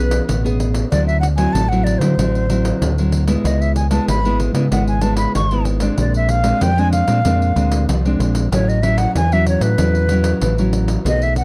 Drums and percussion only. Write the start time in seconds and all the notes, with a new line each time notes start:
0.11 pandeiro
0.29 pandeiro
0.46 pandeiro
0.60 pandeiro
0.74 pandeiro
0.92 pandeiro
1.09 pandeiro
1.23 pandeiro
1.38 pandeiro
1.55 pandeiro
1.73 pandeiro
1.86 pandeiro
2.01 pandeiro
2.19 pandeiro
2.35 pandeiro
2.50 pandeiro
2.65 pandeiro
2.82 pandeiro
2.98 pandeiro
3.12 pandeiro
3.28 pandeiro
3.45 pandeiro
3.62 pandeiro
3.76 pandeiro
3.91 pandeiro
4.08 pandeiro
4.25 pandeiro
4.40 pandeiro
4.55 pandeiro
4.72 pandeiro
4.88 pandeiro
5.01 pandeiro
5.17 pandeiro
5.35 pandeiro
5.51 pandeiro
5.65 pandeiro
5.80 pandeiro
5.98 pandeiro
6.14 pandeiro
6.29 pandeiro
6.44 pandeiro
6.61 pandeiro
6.78 pandeiro
6.93 pandeiro
7.08 pandeiro
7.25 pandeiro
7.42 pandeiro
7.56 pandeiro
7.72 pandeiro
7.89 pandeiro
8.05 pandeiro
8.20 pandeiro
8.35 pandeiro
8.52 pandeiro
8.69 pandeiro
8.83 pandeiro
8.98 pandeiro
9.16 pandeiro
9.32 pandeiro
9.46 pandeiro
9.61 pandeiro
9.78 pandeiro
9.95 pandeiro
10.09 pandeiro
10.24 pandeiro
10.41 pandeiro
10.58 pandeiro
10.73 pandeiro
10.88 pandeiro
11.06 pandeiro
11.22 pandeiro
11.36 pandeiro